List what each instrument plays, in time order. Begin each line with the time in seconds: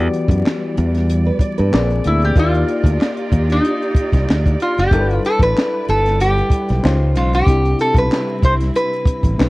Already playing: reed electric piano E3 B3 F#4 G4 D5, string section E3 G3 D5
0.13 closed hi-hat
0.28 fingered electric bass F#2, kick, closed hi-hat
0.46 snare, clap
0.77 fingered electric bass E2, closed hi-hat
0.95 snare, closed hi-hat
1.10 closed hi-hat
1.26 nylon-string guitar B4
1.39 nylon-string guitar D5, muted fingered electric bass stroke, kick, closed hi-hat
1.58 fingered electric bass G2, nylon-string guitar B4, closed hi-hat
1.71 fingered electric bass A#1, reed electric piano A#2 A#3 C4 G#4 D5, string section G#3 A#3, snare, clap
1.91 closed hi-hat
2.04 fingered electric bass D2, resonator guitar played with a steel bar E4, closed hi-hat
2.22 resonator guitar played with a steel bar G4, closed hi-hat
2.35 fingered electric bass D#2, reed electric piano A#3 D#4 F4 G4 D5, string section D#4 F4 G4, kick, closed hi-hat
2.39 resonator guitar played with a steel bar F4
2.54 closed hi-hat
2.68 closed hi-hat
2.84 fingered electric bass D2, kick, closed hi-hat
3.01 snare, clap
3.17 closed hi-hat
3.32 fingered electric bass D#2, kick, closed hi-hat
3.50 resonator guitar played with a steel bar D#4, snare, closed hi-hat
3.65 closed hi-hat
3.82 closed hi-hat
3.95 muted fingered electric bass stroke, kick, closed hi-hat
4.12 fingered electric bass C2, kick, snare, closed hi-hat
4.29 fingered electric bass D2, snare, clap
4.46 kick, closed hi-hat
4.60 resonator guitar played with a steel bar F4, closed hi-hat
4.78 fingered electric bass F#1, resonator guitar played with a steel bar G4, closed hi-hat
4.91 fingered electric bass G1, string section G3 E4 B4, reed electric piano G3 D4 E4 A4 A#4, kick, closed hi-hat
5.01 reed electric piano B4
5.11 closed hi-hat
5.25 resonator guitar played with a steel bar A4, closed hi-hat
5.39 fingered electric bass A1, resonator guitar played with a steel bar B4, kick, closed hi-hat
5.58 snare, clap
5.88 fingered electric bass G1, resonator guitar played with a steel bar A4, closed hi-hat
6.06 snare, closed hi-hat
6.20 resonator guitar played with a steel bar G4, closed hi-hat
6.38 closed hi-hat
6.50 muted fingered electric bass stroke, kick, closed hi-hat
6.69 fingered electric bass B1, snare, closed hi-hat
6.82 fingered electric bass C#2, string section C#3 G#3 F4 C5, reed electric piano C#3 C#4 D#4 F4 C5, snare, clap
7.16 fingered electric bass B1, resonator guitar played with a steel bar F4, closed hi-hat
7.33 resonator guitar played with a steel bar G4, closed hi-hat
7.46 fingered electric bass C2, reed electric piano C3 C4 D4 E4 G4, string section C3 G3 C4 E4, kick, closed hi-hat
7.65 closed hi-hat
7.79 resonator guitar played with a steel bar A4, closed hi-hat
7.94 fingered electric bass B1, resonator guitar played with a steel bar B4, kick, closed hi-hat
8.12 snare, clap
8.42 fingered electric bass C2, resonator guitar played with a steel bar C5, kick, closed hi-hat
8.61 snare, closed hi-hat
8.75 resonator guitar played with a steel bar B4, closed hi-hat
8.93 closed hi-hat
9.05 muted fingered electric bass stroke, kick, closed hi-hat
9.23 fingered electric bass A1, kick, closed hi-hat
9.38 fingered electric bass B1, reed electric piano B2 A3 C4 D#4 B4, string section B2 A3 D#4, snare, clap